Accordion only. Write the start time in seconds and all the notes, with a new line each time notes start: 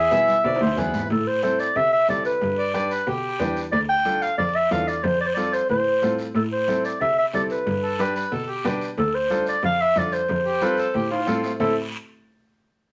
Already playing: G#4
0.11 E5
0.44 D5
0.61 C5
0.78 B4
2.58 D5
2.75 D5
2.91 B4
3.08 G4
7.83 A4
7.99 B4
8.15 B4
8.32 A4
8.48 G4
10.45 G4
10.62 B4
10.78 A4
10.95 G4
11.11 F4
11.60 E4